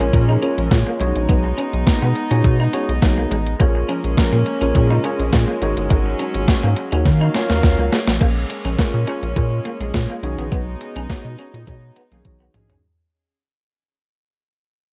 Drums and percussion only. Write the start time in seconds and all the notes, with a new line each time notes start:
0.00 closed hi-hat
0.13 kick, closed hi-hat
0.42 closed hi-hat
0.58 closed hi-hat
0.71 kick, snare, closed hi-hat
1.01 closed hi-hat
1.16 closed hi-hat
1.29 kick, closed hi-hat
1.58 closed hi-hat
1.73 closed hi-hat
1.87 kick, snare, closed hi-hat
2.02 closed hi-hat
2.15 closed hi-hat
2.31 closed hi-hat
2.44 kick, closed hi-hat
2.73 closed hi-hat
2.89 closed hi-hat
3.02 kick, snare, closed hi-hat
3.31 closed hi-hat
3.47 closed hi-hat
3.60 kick, closed hi-hat
3.89 closed hi-hat
4.04 closed hi-hat
4.18 kick, snare, closed hi-hat
4.33 closed hi-hat
4.46 closed hi-hat
4.62 closed hi-hat
4.75 kick, closed hi-hat
5.04 closed hi-hat
5.19 closed hi-hat
5.32 kick, snare, closed hi-hat
5.62 closed hi-hat
5.77 closed hi-hat
5.90 kick, closed hi-hat
6.19 closed hi-hat
6.34 closed hi-hat
6.48 kick, snare, closed hi-hat
6.63 closed hi-hat
6.76 closed hi-hat
6.92 closed hi-hat
7.06 kick, snare, closed hi-hat
7.34 snare, closed hi-hat
7.50 snare, closed hi-hat
7.63 kick, snare, closed hi-hat
7.78 closed hi-hat
7.93 snare, open hi-hat
8.07 snare, closed hi-hat
8.21 kick, closed hi-hat, crash
8.50 closed hi-hat
8.65 closed hi-hat
8.79 kick, snare, closed hi-hat
8.94 closed hi-hat
9.07 closed hi-hat
9.23 closed hi-hat
9.36 kick, closed hi-hat
9.65 closed hi-hat
9.81 closed hi-hat
9.94 kick, snare, closed hi-hat
10.23 closed hi-hat
10.39 closed hi-hat
10.52 kick, closed hi-hat
10.81 closed hi-hat
10.96 closed hi-hat
11.10 kick, snare, closed hi-hat
11.25 closed hi-hat
11.38 closed hi-hat
11.54 closed hi-hat
11.67 kick, closed hi-hat
11.96 closed hi-hat
12.12 closed hi-hat
12.25 kick, closed hi-hat, high tom
12.54 closed hi-hat, mid tom
12.70 closed hi-hat, floor tom